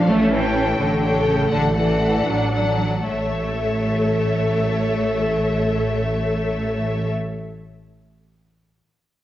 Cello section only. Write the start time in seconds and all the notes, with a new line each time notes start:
0.10 A3
0.33 E3
0.80 D3
1.27 C#3
1.52 D3
1.76 E3
2.27 F#3
3.08 A3